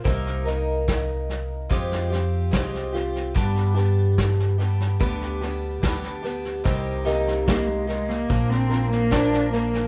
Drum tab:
SD |ooo-o-o-ooo-oooo|ooo-ooooooo-oooo|o-ooo-oooooooooo|
BD |o---o---o---o---|o---o---o---o---|o---o---o---o---|